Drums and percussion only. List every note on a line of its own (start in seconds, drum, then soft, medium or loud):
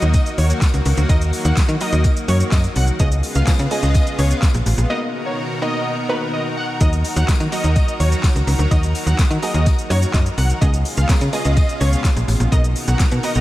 0.02 closed hi-hat medium
0.02 shaker medium
0.14 kick loud
0.14 closed hi-hat medium
0.14 tambourine medium
0.14 shaker medium
0.26 closed hi-hat medium
0.26 shaker medium
0.38 open hi-hat medium
0.38 shaker medium
0.50 closed hi-hat medium
0.50 shaker medium
0.62 kick loud
0.62 snare medium
0.62 clap loud
0.62 closed hi-hat medium
0.62 tambourine medium
0.62 shaker medium
0.74 closed hi-hat medium
0.74 shaker medium
0.85 open hi-hat medium
0.85 tambourine medium
0.85 shaker medium
0.97 closed hi-hat medium
0.97 shaker medium
1.09 kick loud
1.09 closed hi-hat medium
1.09 tambourine soft
1.09 shaker medium
1.21 closed hi-hat medium
1.21 shaker medium
1.33 open hi-hat medium
1.33 tambourine soft
1.33 shaker medium
1.45 closed hi-hat medium
1.45 shaker medium
1.57 kick loud
1.57 snare loud
1.57 clap loud
1.57 closed hi-hat medium
1.57 tambourine medium
1.57 shaker medium
1.69 closed hi-hat medium
1.69 shaker medium
1.81 open hi-hat medium
1.81 tambourine medium
1.81 shaker medium
1.92 closed hi-hat soft
1.92 shaker medium
2.04 kick loud
2.04 closed hi-hat medium
2.04 tambourine medium
2.04 shaker medium
2.17 closed hi-hat medium
2.17 shaker medium
2.28 open hi-hat medium
2.28 shaker medium
2.40 closed hi-hat medium
2.40 shaker medium
2.52 kick loud
2.52 snare medium
2.52 clap loud
2.52 closed hi-hat medium
2.52 tambourine medium
2.52 shaker medium
2.64 closed hi-hat medium
2.64 shaker medium
2.76 open hi-hat medium
2.76 tambourine medium
2.76 shaker medium
2.87 closed hi-hat medium
2.87 shaker medium
3.00 kick loud
3.00 closed hi-hat medium
3.00 shaker medium
3.12 closed hi-hat medium
3.12 shaker medium
3.23 open hi-hat medium
3.23 tambourine soft
3.23 shaker medium
3.35 closed hi-hat medium
3.35 shaker medium
3.47 kick loud
3.47 snare loud
3.47 clap loud
3.47 closed hi-hat medium
3.47 tambourine medium
3.47 shaker medium
3.59 closed hi-hat medium
3.59 shaker medium
3.71 open hi-hat medium
3.71 tambourine medium
3.71 shaker medium
3.83 closed hi-hat medium
3.83 shaker medium
3.95 kick loud
3.95 closed hi-hat medium
3.95 tambourine medium
3.95 shaker medium
4.07 closed hi-hat medium
4.07 shaker medium
4.19 open hi-hat medium
4.19 tambourine soft
4.19 shaker medium
4.31 closed hi-hat medium
4.31 shaker medium
4.42 kick loud
4.42 snare medium
4.42 clap loud
4.42 closed hi-hat medium
4.42 tambourine medium
4.42 shaker medium
4.54 closed hi-hat medium
4.54 shaker medium
4.66 open hi-hat medium
4.66 tambourine medium
4.66 shaker medium
4.78 closed hi-hat medium
4.78 shaker medium
6.81 kick loud
6.81 closed hi-hat medium
6.81 shaker medium
6.93 closed hi-hat medium
6.93 shaker medium
7.05 open hi-hat medium
7.05 tambourine soft
7.05 shaker medium
7.16 closed hi-hat medium
7.16 shaker medium
7.29 kick loud
7.29 snare loud
7.29 clap loud
7.29 closed hi-hat medium
7.29 tambourine medium
7.29 shaker medium
7.40 closed hi-hat medium
7.40 shaker medium
7.52 open hi-hat medium
7.52 tambourine medium
7.52 shaker medium
7.64 closed hi-hat medium
7.64 shaker medium
7.76 kick loud
7.76 closed hi-hat medium
7.76 tambourine soft
7.76 shaker medium
7.88 closed hi-hat medium
7.88 shaker medium
8.00 open hi-hat medium
8.00 tambourine soft
8.00 shaker medium
8.12 closed hi-hat medium
8.12 shaker medium
8.24 kick loud
8.24 snare medium
8.24 clap loud
8.24 closed hi-hat medium
8.24 tambourine medium
8.24 shaker medium
8.36 closed hi-hat medium
8.36 shaker medium
8.47 open hi-hat medium
8.47 tambourine medium
8.47 shaker medium
8.59 closed hi-hat medium
8.59 shaker medium
8.71 kick loud
8.71 closed hi-hat medium
8.71 tambourine soft
8.71 shaker medium
8.83 closed hi-hat medium
8.83 shaker medium
8.95 open hi-hat medium
8.95 tambourine soft
8.95 shaker medium
9.07 closed hi-hat medium
9.07 shaker medium
9.19 kick loud
9.19 snare loud
9.19 clap loud
9.19 closed hi-hat medium
9.19 tambourine medium
9.19 shaker medium
9.31 closed hi-hat medium
9.31 shaker medium
9.42 open hi-hat medium
9.42 tambourine medium
9.42 shaker medium
9.54 closed hi-hat medium
9.54 shaker medium
9.66 kick loud
9.66 closed hi-hat medium
9.66 tambourine medium
9.66 shaker medium
9.79 closed hi-hat medium
9.79 shaker medium
9.90 open hi-hat medium
9.90 tambourine soft
9.90 shaker medium
10.02 closed hi-hat medium
10.02 shaker medium
10.14 kick loud
10.14 snare medium
10.14 clap loud
10.14 closed hi-hat medium
10.14 tambourine medium
10.14 shaker medium
10.26 closed hi-hat medium
10.26 shaker medium
10.38 open hi-hat medium
10.38 tambourine medium
10.38 shaker medium
10.50 closed hi-hat medium
10.50 shaker medium
10.62 kick loud
10.62 closed hi-hat medium
10.62 shaker medium
10.74 closed hi-hat medium
10.74 shaker medium
10.85 open hi-hat medium
10.85 tambourine soft
10.85 shaker medium
10.97 closed hi-hat medium
10.97 shaker medium
11.09 kick loud
11.09 snare loud
11.09 clap loud
11.09 closed hi-hat medium
11.09 tambourine medium
11.09 shaker medium
11.21 closed hi-hat medium
11.21 shaker medium
11.33 open hi-hat medium
11.33 tambourine medium
11.33 shaker medium
11.45 closed hi-hat medium
11.45 shaker medium
11.57 kick loud
11.57 closed hi-hat medium
11.57 tambourine medium
11.57 shaker medium
11.69 closed hi-hat medium
11.69 shaker medium
11.81 open hi-hat medium
11.81 tambourine soft
11.81 shaker medium
11.93 closed hi-hat medium
11.93 shaker medium
12.04 kick loud
12.04 snare medium
12.04 clap loud
12.04 closed hi-hat medium
12.04 tambourine medium
12.04 shaker medium
12.17 closed hi-hat medium
12.17 shaker medium
12.28 open hi-hat medium
12.28 tambourine medium
12.28 shaker medium
12.40 closed hi-hat medium
12.40 shaker medium
12.52 kick loud
12.52 closed hi-hat medium
12.52 shaker medium
12.64 closed hi-hat medium
12.64 shaker medium
12.76 open hi-hat medium
12.76 tambourine soft
12.76 shaker medium
12.88 closed hi-hat medium
12.88 shaker medium
13.00 kick loud
13.00 snare loud
13.00 clap loud
13.00 closed hi-hat medium
13.00 tambourine medium
13.00 shaker medium
13.11 closed hi-hat medium
13.11 shaker medium
13.23 open hi-hat medium
13.23 tambourine medium
13.23 shaker medium
13.35 closed hi-hat medium
13.35 shaker medium